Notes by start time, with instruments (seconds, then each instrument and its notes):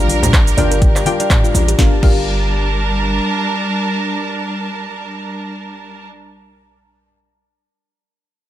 Already playing: 808-style bass A#1, string section G3 D4 G4 A#4, synth stab D4 F4 G4 A#4 F5
0.08 kalimba D4, open hi-hat, high conga, shaker
0.23 closed hi-hat, mid tom, low conga, shaker
0.33 kick, cross-stick, clap, closed hi-hat, shaker
0.46 open hi-hat, muted conga, shaker
0.57 808-style bass G1, synth stab D4 F4 G4 A#4 G5, kalimba D5, open hi-hat, high conga, low conga, shaker
0.71 kalimba A#4, closed hi-hat, shaker
0.82 kalimba G5, kick, closed hi-hat, muted conga, shaker
0.96 kalimba F5, cross-stick, clap, shaker
1.06 synth stab D4 F4 G4 A#4 G5, open hi-hat, high conga, shaker
1.20 synth stab D4 F4 G4 A#4 F5, kalimba D5, closed hi-hat, muted conga, shaker
1.30 kick, cross-stick, clap, closed hi-hat, mid tom, shaker
1.44 kalimba F4, shaker
1.54 808-style bass A1, kalimba F4, open hi-hat, muted conga, low conga, shaker
1.68 kalimba G4, closed hi-hat, shaker
1.79 808-style bass G1, string section G3 D4 A#4 A5, synth stab D4 F4 G4 A#4 F5, kalimba G4, kick, snare
2.03 808-style bass G1, synth stab D4 F4 G4 A#4 F5, kalimba G4, kick, crash